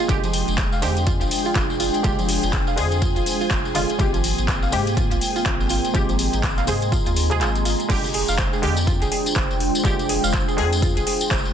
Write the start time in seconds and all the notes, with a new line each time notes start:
Already playing: G#3 A#5 C6
0.08 F1 D3 G#3 D4 F4 G4 G#4 G5, kick, closed hi-hat, tambourine
0.24 F3, closed hi-hat, tambourine
0.33 open hi-hat, tambourine
0.48 F1, closed hi-hat, tambourine
0.58 kick, clap, closed hi-hat, tambourine
0.72 C5 F5, tambourine
0.82 F2 D3 G#3 G4 C5, open hi-hat, tambourine
0.97 closed hi-hat, tambourine
1.07 F4, kick, closed hi-hat, tambourine
1.21 F1 F4, closed hi-hat, tambourine
1.31 open hi-hat, tambourine
1.45 F4, tambourine
1.55 F1 F4, kick, clap, closed hi-hat, tambourine
1.70 tambourine
1.80 F4, open hi-hat, tambourine
1.94 closed hi-hat, tambourine
2.03 F1 D3 G#3 F4 G4, kick, closed hi-hat, tambourine
2.19 F3, closed hi-hat, tambourine
2.29 open hi-hat, tambourine
2.43 F1, closed hi-hat, tambourine
2.53 kick, clap, closed hi-hat, tambourine
2.67 F5, tambourine
2.76 F2 D3 G#3 G#4 C5, open hi-hat, tambourine
2.91 closed hi-hat, tambourine
3.01 F4, kick, closed hi-hat, tambourine
3.16 F1 F4, closed hi-hat, tambourine
3.26 open hi-hat, tambourine
3.41 F4, tambourine
3.51 F1 F4, kick, clap, closed hi-hat, tambourine
3.65 tambourine
3.74 D3 G#3 F4, open hi-hat, tambourine
3.90 closed hi-hat, tambourine
3.98 G#1 C3 G#3 A#3 C4 F4 G4 G5, kick, closed hi-hat, tambourine
4.14 F3, closed hi-hat, tambourine
4.24 open hi-hat, tambourine
4.38 G#1, closed hi-hat, tambourine
4.48 kick, clap, closed hi-hat, tambourine
4.53 D#5
4.62 F5, tambourine
4.72 G#2 C3 G#3 G4 C5, open hi-hat, tambourine
4.79 C6
4.87 closed hi-hat, tambourine
4.97 F4, kick, closed hi-hat, tambourine
5.11 G#1 F4 A#5, closed hi-hat, tambourine
5.21 open hi-hat, tambourine
5.36 F4, tambourine
5.45 G#1 F4, kick, clap, closed hi-hat, tambourine
5.60 tambourine
5.69 F4, open hi-hat, tambourine
5.84 closed hi-hat, tambourine
5.93 G#1 C3 G#3 F4 G4, kick, closed hi-hat, tambourine
6.09 F3, closed hi-hat, tambourine
6.19 open hi-hat, tambourine
6.33 G#1, closed hi-hat, tambourine
6.43 kick, clap, closed hi-hat, tambourine
6.58 F5, clap, closed hi-hat, tambourine
6.67 G#2 C3 G#3 G#4 C5, open hi-hat, tambourine
6.82 closed hi-hat, tambourine
6.92 F4, kick, closed hi-hat, tambourine
7.06 D#2 F4, closed hi-hat, tambourine
7.16 open hi-hat, tambourine
7.30 C3 G#3 F4 G#4, closed hi-hat, tambourine
7.41 G#1 F4, clap, closed hi-hat, tambourine
7.55 closed hi-hat, tambourine
7.65 F4, open hi-hat, tambourine
7.80 closed hi-hat, tambourine
7.88 F1 D3 G#3 D4 F4 G4 G5, kick, closed hi-hat, crash, tambourine
8.04 C5, closed hi-hat, tambourine
8.14 G#4, open hi-hat
8.28 F1 F5, tambourine
8.38 C5, kick, clap, closed hi-hat, tambourine
8.53 G#4, tambourine
8.62 F2 D3 G#3 G4, open hi-hat
8.76 closed hi-hat, tambourine
8.87 F4, kick, closed hi-hat, tambourine
9.02 F1 G#4, closed hi-hat, tambourine
9.12 G#4, open hi-hat
9.26 closed hi-hat, tambourine
9.36 F1 C5, kick, clap, closed hi-hat, tambourine
9.51 tambourine
9.60 open hi-hat
9.75 closed hi-hat, tambourine
9.84 F1 D3 G#3 F4 G4, kick, closed hi-hat, tambourine
9.99 closed hi-hat, tambourine
10.09 G#4, open hi-hat
10.24 F1 F5, tambourine
10.33 C5, kick, clap, closed hi-hat, tambourine
10.48 G#4, tambourine
10.57 F2 D3 G#3 G#4, open hi-hat
10.72 closed hi-hat, tambourine
10.82 F4, kick, closed hi-hat, tambourine
10.97 F1 G#4, closed hi-hat, tambourine
11.07 G#4, open hi-hat
11.21 closed hi-hat, tambourine
11.31 F1 C5, kick, clap, closed hi-hat, tambourine
11.45 tambourine